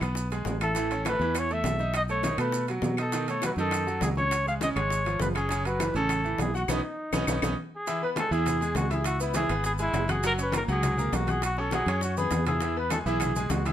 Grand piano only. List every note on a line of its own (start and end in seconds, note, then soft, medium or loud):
0.01 0.26 B3 medium
0.01 0.26 B4 medium
0.32 0.56 G#3 medium
0.32 0.56 G#4 medium
0.62 0.73 E4 medium
0.62 0.74 E5 medium
0.76 0.88 E3 medium
0.76 0.88 E4 medium
0.92 1.03 C#4 medium
0.92 1.03 C#5 medium
1.06 1.18 A3 medium
1.06 1.18 A4 medium
1.21 1.45 E3 medium
1.21 1.45 E4 medium
1.51 1.75 A3 medium
1.51 1.75 A4 medium
1.80 2.04 D#4 medium
1.80 2.04 D#5 medium
2.09 2.21 A3 medium
2.09 2.22 A4 medium
2.24 2.36 D#3 medium
2.24 2.37 D#4 medium
2.39 2.63 A3 medium
2.39 2.63 A4 medium
2.69 2.93 F#3 medium
2.69 2.94 F#4 medium
2.99 3.11 D#4 medium
2.99 3.11 D#5 medium
3.13 3.25 D#3 medium
3.13 3.26 D#4 medium
3.28 3.40 A3 medium
3.28 3.40 A4 medium
3.44 3.55 F#3 medium
3.44 3.56 F#4 medium
3.58 3.82 D#3 medium
3.58 3.82 D#4 medium
3.87 4.11 F#3 medium
3.87 4.11 F#4 medium
4.17 4.41 C#4 medium
4.17 4.41 C#5 medium
4.47 4.59 G#3 medium
4.47 4.59 G#4 medium
4.61 4.74 C#3 medium
4.61 4.74 C#4 medium
4.76 5.00 G#3 medium
4.76 5.01 G#4 medium
5.07 5.31 F3 medium
5.07 5.31 F4 medium
5.35 5.47 C#4 medium
5.35 5.48 C#5 medium
5.51 5.63 C#3 medium
5.51 5.63 C#4 medium
5.66 5.78 F#3 medium
5.66 5.78 F#4 medium
5.81 5.92 E3 medium
5.81 5.93 E4 medium
5.95 6.19 C#3 medium
5.95 6.20 C#4 medium
6.24 6.49 E3 medium
6.24 6.49 E4 medium
6.54 6.66 F#4 medium
6.54 6.67 F#5 medium
6.69 6.79 B3 loud
6.69 6.79 C#4 medium
6.69 6.78 D#4 loud
7.13 7.23 B3 medium
7.13 7.23 C#4 medium
7.13 7.23 D#4 medium
7.28 7.38 B3 medium
7.28 7.38 C#4 medium
7.28 7.37 D#4 medium
7.43 7.52 B3 medium
7.43 7.52 C#4 medium
7.43 7.52 D#4 medium
7.87 7.99 E3 medium
7.87 8.00 E4 medium
7.87 8.00 E5 medium
8.02 8.14 B3 medium
8.02 8.15 B4 medium
8.02 8.15 B5 medium
8.17 8.29 G#3 medium
8.17 8.29 G#4 medium
8.17 8.30 G#5 medium
8.31 8.56 E3 medium
8.31 8.56 E4 medium
8.31 8.56 E5 medium
8.61 8.85 G#3 medium
8.61 8.85 G#4 medium
8.61 8.86 G#5 medium
8.90 9.15 E4 medium
8.90 9.15 E5 medium
8.90 9.15 E6 medium
9.20 9.32 B3 medium
9.20 9.33 B4 medium
9.20 9.33 B5 medium
9.35 9.47 E3 medium
9.35 9.48 E4 medium
9.35 9.48 E5 medium
9.50 9.74 B3 medium
9.50 9.74 B4 medium
9.50 9.75 B5 medium
9.79 10.04 G#3 medium
9.79 10.04 G#4 medium
9.79 10.04 G#5 medium
10.09 10.21 F#4 medium
10.09 10.21 F#5 medium
10.09 10.21 F#6 medium
10.24 10.36 F#3 medium
10.24 10.36 F#4 medium
10.24 10.37 F#5 medium
10.38 10.51 C#4 medium
10.38 10.51 C#5 medium
10.38 10.51 C#6 medium
10.54 10.66 A#3 medium
10.54 10.66 A#4 medium
10.54 10.66 A#5 medium
10.68 10.93 F#3 medium
10.68 10.93 F#4 medium
10.68 10.93 F#5 medium
10.98 11.23 A#3 medium
10.98 11.23 A#4 medium
10.98 11.23 A#5 medium
11.28 11.52 F#4 medium
11.28 11.52 F#5 medium
11.28 11.53 F#6 medium
11.58 11.70 C#4 medium
11.58 11.70 C#5 medium
11.58 11.70 C#6 medium
11.73 11.85 F#3 medium
11.73 11.85 F#4 medium
11.73 11.85 F#5 medium
11.88 12.12 C#4 medium
11.88 12.12 C#5 medium
11.88 12.13 C#6 medium
12.17 12.41 B3 medium
12.17 12.42 B4 medium
12.17 12.42 B5 medium
12.47 12.59 E4 medium
12.47 12.59 E5 medium
12.47 12.59 E6 medium
12.62 12.74 E3 medium
12.62 12.74 E4 medium
12.62 12.74 E5 medium
12.77 12.89 B3 medium
12.77 12.89 B4 medium
12.77 12.89 B5 medium
12.91 13.03 G#3 medium
12.91 13.03 G#4 medium
12.91 13.04 G#5 medium
13.06 13.30 E3 medium
13.06 13.31 E4 medium
13.06 13.31 E5 medium
13.36 13.60 G#3 medium
13.36 13.61 G#4 medium
13.36 13.61 G#5 medium
13.65 13.73 E4 medium
13.65 13.73 E5 medium
13.65 13.73 E6 medium